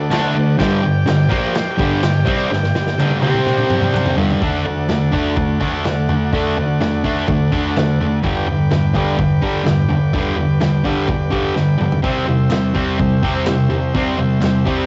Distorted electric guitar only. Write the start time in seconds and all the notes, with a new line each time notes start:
0.10 D3 A3 D4
0.35 D3 A3
0.58 G2 D3 G3
0.83 G2 D3
1.06 G2 D3
1.29 A#2 F3 A#3
1.54 muted distorted electric guitar stroke
1.77 G2 D3 G3
2.03 G2 D3
2.25 C3 G3 C4
2.50 G2 D3
2.75 G2 D3
2.99 G2 D3 G3
3.22 C3 G3 C4
4.16 G2 D3 G3
4.42 D3 A3 D4
4.66 D3 A3
4.89 D3 A3
5.12 D3 A3 D4
5.37 D3 A3
5.60 D3 A3 D4
5.85 D3 A3
6.09 D3 A3
6.33 D3 A3 D4
6.57 D3 A3
6.81 D3 A3
7.04 D3 A3 D4
7.28 D3 A3
7.52 D3 A3 D4
7.77 D3 A3
8.01 D3 A3
8.23 G2 D3 G3
8.47 G2 D3
8.70 G2 D3
8.93 G2 D3 G3
9.18 G2 D3
9.41 G2 D3 G3
9.64 G2 D3
9.89 G2 D3
10.13 G2 D3 G3
10.36 G2 D3
10.60 G2 D3
10.84 G2 D3 G3
11.08 G2 D3
11.30 G2 D3 G3
11.55 G2 D3
11.78 G2 D3
12.03 C3 G3 C4
12.27 C3 G3
12.50 C3 G3
12.74 C3 G3 C4
12.98 C3 G3
13.23 C3 G3 C4
13.47 C3 G3
13.70 C3 G3
13.94 C3 G3 C4
14.18 C3 G3
14.40 C3 G3
14.65 C3 G3 C4